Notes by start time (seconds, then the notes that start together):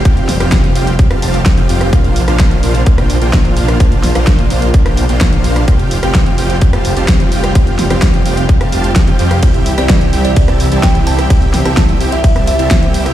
Already playing: C3 F3 G3 G4
0.05 F1 C4 F4 G4 F5 G5, kick, closed hi-hat
0.17 closed hi-hat
0.29 snare, open hi-hat
0.40 F1 C4 F4 G4 F5 G5, cross-stick, closed hi-hat
0.52 kick, snare, closed hi-hat
0.64 closed hi-hat
0.76 F1 C4 F4 G4 F5 G5, open hi-hat
0.87 closed hi-hat
0.99 kick, closed hi-hat
1.11 F1 C4 F4 G4 F5 A5, cross-stick, closed hi-hat
1.22 F1 C4 F4 G4 F5 A5, open hi-hat
1.34 closed hi-hat
1.46 kick, snare, closed hi-hat
1.58 F1 C4 F4 G4 F5 G5, closed hi-hat
1.69 F1 C4 F4 G4 F5 G5, open hi-hat
1.81 cross-stick, closed hi-hat
1.93 A#1 A#3 D4 F4 C5 F5, kick, closed hi-hat
2.04 closed hi-hat
2.16 open hi-hat
2.28 A#1 A#3 D4 F4 C5 F5, cross-stick, closed hi-hat
2.40 kick, snare, closed hi-hat
2.51 closed hi-hat
2.63 A#1 A#3 D4 F4 C5 F5, open hi-hat
2.75 closed hi-hat
2.86 kick, closed hi-hat
2.98 A#1 A#3 D4 F4 C5 G5, cross-stick, closed hi-hat
3.10 open hi-hat
3.22 A#1 A#3 D4 F4 C5 G5, closed hi-hat
3.33 A#1 A#3 D4 F4 C5 F5, kick, snare, closed hi-hat
3.45 closed hi-hat
3.57 open hi-hat
3.68 cross-stick, closed hi-hat
3.80 A#1 A#3 D4 F4 C5 F5, kick, closed hi-hat
3.92 closed hi-hat
4.04 snare, open hi-hat
4.15 A#1 A#3 D4 F4 C5 F5, cross-stick, closed hi-hat
4.27 kick, snare, closed hi-hat
4.39 closed hi-hat
4.50 A#1 A#3 D4 F4 C5 F5, open hi-hat
4.62 closed hi-hat
4.74 kick, closed hi-hat
4.86 A#1 A#3 D4 F4 C5 G5, cross-stick, closed hi-hat
4.97 open hi-hat
5.09 A#1 A#3 D4 F4 C5 G5, closed hi-hat
5.21 A#1 A#3 D4 F4 C5 F5, kick, snare, closed hi-hat
5.33 closed hi-hat
5.44 open hi-hat
5.56 cross-stick, closed hi-hat
5.68 F1 C3 F3 G3 C4 F4 G4 F5 G5, kick, closed hi-hat
5.79 closed hi-hat
5.91 open hi-hat
6.03 F1 C4 F4 G4 F5 G5, cross-stick, closed hi-hat
6.15 kick, snare, closed hi-hat
6.26 closed hi-hat
6.38 F1 C4 F4 G4 F5 G5, open hi-hat
6.50 closed hi-hat
6.61 kick, closed hi-hat
6.73 F1 C4 F4 G4 F5 A5, cross-stick, closed hi-hat
6.85 open hi-hat
6.97 F1 C4 F4 G4 F5 A5, closed hi-hat
7.08 F1 C4 F4 G4 F5 G5, kick, snare, closed hi-hat
7.20 closed hi-hat
7.32 open hi-hat
7.44 cross-stick, closed hi-hat
7.55 F1 C4 F4 G4 F5 G5, kick, closed hi-hat
7.67 closed hi-hat
7.79 snare, open hi-hat
7.90 F1 C4 F4 G4 F5 G5, cross-stick, closed hi-hat
8.02 kick, snare, closed hi-hat
8.14 closed hi-hat
8.26 F1 C4 F4 G4 F5 G5, open hi-hat
8.37 closed hi-hat
8.49 kick, closed hi-hat
8.61 F1 C4 F4 G4 F5 A5, cross-stick, closed hi-hat
8.72 F1 C4 F4 G4 F5 A5, open hi-hat
8.84 closed hi-hat
8.96 kick, snare, closed hi-hat
9.07 F1 C4 F4 G4 F5 G5, closed hi-hat
9.19 F2 C4 F4 G4 F5 G5, open hi-hat
9.31 cross-stick, closed hi-hat
9.43 C2 E3 G3 C4 E4 G4 E5 G5, kick, closed hi-hat, ride
9.54 closed hi-hat
9.66 open hi-hat
9.78 C2 C4 E4 G4 D5 E5 G5, cross-stick, closed hi-hat
9.89 kick, snare, closed hi-hat, ride
10.01 closed hi-hat
10.13 C2 C4 E4 G4 E5 G5, open hi-hat
10.25 D5, closed hi-hat
10.36 kick, closed hi-hat, ride
10.48 C2 C4 E4 G4 E5 A5, cross-stick, closed hi-hat
10.60 open hi-hat
10.72 C2 C4 E4 G4 E5 A5, closed hi-hat
10.83 C2 C4 E4 G4 E5 G5, kick, snare, closed hi-hat, ride
10.95 closed hi-hat
11.07 A5, open hi-hat
11.19 cross-stick, closed hi-hat
11.30 C2 C4 E4 G4 E5 G5, kick, closed hi-hat, ride
11.42 closed hi-hat
11.54 snare, open hi-hat
11.65 C2 C4 E4 G4 E5 G5 A5, cross-stick, closed hi-hat
11.77 A5, kick, snare, closed hi-hat, ride
11.89 closed hi-hat
12.01 C2 C4 E4 G4 E5 G5, open hi-hat
12.12 E5, closed hi-hat
12.24 kick, closed hi-hat, ride
12.36 C2 C4 E4 G4 E5 A5, cross-stick, closed hi-hat
12.47 E5, open hi-hat
12.59 C2 C4 E4 G4 E5 A5, closed hi-hat
12.71 C2 C4 E4 G4 E5 G5, kick, snare, closed hi-hat, ride
12.83 closed hi-hat
12.94 open hi-hat
13.06 cross-stick, closed hi-hat